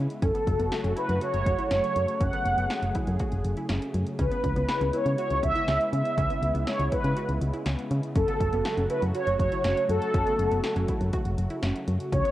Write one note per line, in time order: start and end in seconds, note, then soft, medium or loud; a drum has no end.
0.00 0.18 C#3 medium
0.00 0.18 G#3 medium
0.00 0.18 B3 medium
0.00 0.18 E4 medium
0.10 closed hi-hat medium
0.22 0.32 F#1 loud
0.22 12.08 C#3 medium
0.22 4.15 F#3 medium
0.22 4.15 A3 medium
0.22 0.29 C#4 medium
0.22 2.19 F#4 medium
0.22 0.93 A4 medium
0.22 kick loud
0.22 closed hi-hat medium
0.35 0.48 B3 medium
0.35 closed hi-hat soft
0.47 0.57 F#1 loud
0.47 kick medium
0.47 closed hi-hat medium
0.60 0.69 F#1 medium
0.60 0.73 B3 medium
0.60 closed hi-hat soft
0.72 snare loud
0.72 closed hi-hat medium
0.84 0.94 F#1 loud
0.84 0.91 C#4 medium
0.84 closed hi-hat soft
0.97 1.10 E4 medium
0.97 1.20 B4 medium
0.97 closed hi-hat medium
1.09 1.19 F#2 loud
1.09 closed hi-hat soft
1.21 1.35 F#4 medium
1.21 1.70 C#5 loud
1.21 closed hi-hat medium
1.34 1.44 F#1 medium
1.34 closed hi-hat soft
1.46 1.56 F#1 loud
1.46 kick medium
1.46 closed hi-hat medium
1.58 1.65 E4 medium
1.58 closed hi-hat soft
1.71 1.81 F#1 loud
1.71 1.84 C#4 medium
1.71 2.22 C#5 loud
1.71 snare loud
1.71 closed hi-hat medium
1.84 closed hi-hat soft
1.96 2.06 F#2 loud
1.96 closed hi-hat medium
2.08 closed hi-hat medium
2.21 2.30 F#1 loud
2.21 2.27 C#4 medium
2.21 4.17 G#4 medium
2.21 3.16 F#5 loud
2.21 kick loud
2.21 closed hi-hat medium
2.33 2.47 B3 medium
2.33 closed hi-hat soft
2.45 2.55 F#1 medium
2.45 closed hi-hat medium
2.58 2.68 F#1 medium
2.58 2.71 B3 medium
2.58 closed hi-hat soft
2.70 snare loud
2.70 closed hi-hat medium
2.82 2.92 F#1 medium
2.82 2.89 C#4 medium
2.82 closed hi-hat soft
2.95 3.09 E4 medium
2.95 kick medium
2.95 closed hi-hat medium
3.07 3.17 F#2 loud
3.07 closed hi-hat medium
3.20 3.33 F#4 medium
3.20 kick medium
3.20 closed hi-hat medium
3.32 3.42 F#1 loud
3.32 closed hi-hat soft
3.45 3.54 F#1 loud
3.45 closed hi-hat medium
3.57 3.64 E4 medium
3.57 closed hi-hat soft
3.69 3.79 F#1 loud
3.69 3.83 C#4 medium
3.69 snare loud
3.69 closed hi-hat medium
3.82 closed hi-hat soft
3.94 4.04 F#2 loud
3.94 closed hi-hat medium
4.07 closed hi-hat medium
4.19 4.29 C#2 loud
4.19 8.12 G#3 medium
4.19 8.12 B3 medium
4.19 4.26 C#4 medium
4.19 8.12 E4 medium
4.19 4.96 B4 medium
4.19 kick loud
4.19 closed hi-hat medium
4.31 4.45 B3 medium
4.31 closed hi-hat soft
4.44 4.54 C#2 medium
4.44 kick medium
4.44 closed hi-hat medium
4.56 4.66 C#2 loud
4.56 4.70 B3 medium
4.56 closed hi-hat soft
4.69 snare loud
4.69 closed hi-hat medium
4.81 4.91 C#2 medium
4.81 4.88 C#4 medium
4.81 closed hi-hat soft
4.93 5.07 E4 medium
4.93 5.17 C#5 loud
4.93 closed hi-hat medium
5.06 5.16 C#3 loud
5.06 closed hi-hat soft
5.18 5.32 F#4 medium
5.18 5.44 C#5 loud
5.18 closed hi-hat medium
5.30 5.41 C#2 medium
5.30 closed hi-hat soft
5.43 5.53 C#2 loud
5.43 5.89 E5 loud
5.43 kick medium
5.43 closed hi-hat medium
5.55 5.62 E4 medium
5.55 closed hi-hat soft
5.68 5.78 C#2 loud
5.68 5.81 C#4 medium
5.68 snare loud
5.68 closed hi-hat medium
5.81 closed hi-hat soft
5.92 6.02 C#3 loud
5.92 6.69 E5 loud
5.92 closed hi-hat medium
6.05 closed hi-hat medium
6.17 6.27 C#2 loud
6.17 6.24 C#4 medium
6.17 kick loud
6.17 closed hi-hat medium
6.30 6.43 B3 medium
6.30 closed hi-hat medium
6.42 6.52 C#2 loud
6.42 closed hi-hat medium
6.54 6.64 C#2 loud
6.54 6.68 B3 medium
6.54 closed hi-hat soft
6.67 6.93 C#5 medium
6.67 snare loud
6.67 closed hi-hat medium
6.79 6.89 C#2 loud
6.79 6.86 C#4 medium
6.79 closed hi-hat soft
6.92 7.05 E4 medium
6.92 7.38 B4 medium
6.92 kick medium
6.92 closed hi-hat medium
7.04 7.14 C#3 loud
7.04 closed hi-hat soft
7.16 7.30 F#4 medium
7.16 closed hi-hat medium
7.29 7.39 C#2 loud
7.29 closed hi-hat soft
7.41 7.51 C#2 loud
7.41 closed hi-hat medium
7.54 7.60 E4 medium
7.54 closed hi-hat soft
7.66 7.76 C#2 medium
7.66 7.79 C#4 medium
7.66 snare loud
7.66 closed hi-hat medium
7.79 closed hi-hat soft
7.91 8.01 C#3 loud
7.91 closed hi-hat medium
8.03 closed hi-hat medium
8.16 8.26 F#1 loud
8.16 12.08 F#3 medium
8.16 12.09 A3 medium
8.16 8.22 C#4 medium
8.16 12.08 F#4 medium
8.16 8.86 A4 loud
8.16 kick loud
8.16 closed hi-hat medium
8.28 8.42 B3 medium
8.28 closed hi-hat soft
8.41 8.50 F#1 loud
8.41 kick medium
8.41 closed hi-hat medium
8.53 8.63 F#1 medium
8.53 8.66 B3 medium
8.53 closed hi-hat soft
8.65 snare loud
8.65 closed hi-hat medium
8.78 8.88 F#1 loud
8.78 8.84 C#4 medium
8.78 closed hi-hat soft
8.90 9.04 E4 medium
8.90 9.01 B4 loud
8.90 closed hi-hat medium
9.02 9.12 F#2 loud
9.02 closed hi-hat soft
9.15 9.29 F#4 medium
9.15 9.38 C#5 loud
9.15 closed hi-hat medium
9.27 9.37 F#1 medium
9.27 closed hi-hat soft
9.40 9.49 F#1 loud
9.40 9.63 C#5 loud
9.40 kick medium
9.40 closed hi-hat medium
9.52 9.59 E4 medium
9.52 closed hi-hat soft
9.64 9.74 F#1 loud
9.64 9.78 C#4 medium
9.64 9.90 C#5 loud
9.64 snare loud
9.64 closed hi-hat medium
9.77 closed hi-hat soft
9.89 9.99 F#2 loud
9.89 11.09 A4 medium
9.89 closed hi-hat medium
10.02 closed hi-hat medium
10.14 10.24 F#1 loud
10.14 10.21 C#4 medium
10.14 kick loud
10.14 closed hi-hat medium
10.27 10.40 B3 medium
10.27 closed hi-hat medium
10.39 10.49 F#1 loud
10.39 closed hi-hat medium
10.51 10.61 F#1 medium
10.51 10.65 B3 medium
10.51 closed hi-hat soft
10.64 snare loud
10.64 closed hi-hat medium
10.76 10.86 F#1 loud
10.76 10.83 C#4 medium
10.76 closed hi-hat soft
10.88 11.02 E4 medium
10.88 kick medium
10.88 closed hi-hat medium
11.01 11.11 F#2 loud
11.01 closed hi-hat soft
11.13 11.27 F#4 medium
11.13 kick loud
11.13 closed hi-hat medium
11.25 11.36 F#1 medium
11.25 closed hi-hat soft
11.38 11.48 F#1 loud
11.38 closed hi-hat medium
11.50 11.57 E4 medium
11.50 closed hi-hat soft
11.63 11.73 F#1 loud
11.63 11.76 C#4 medium
11.63 snare loud
11.63 closed hi-hat medium
11.76 closed hi-hat soft
11.88 11.98 F#2 loud
11.88 closed hi-hat medium
12.00 closed hi-hat medium
12.12 12.22 C#2 loud
12.12 12.31 C#3 medium
12.12 12.31 E3 medium
12.12 12.31 G#3 medium
12.12 12.19 C#4 medium
12.12 12.31 E4 medium
12.12 12.31 C#5 medium
12.12 kick loud
12.12 closed hi-hat medium
12.25 12.31 B3 medium
12.25 closed hi-hat medium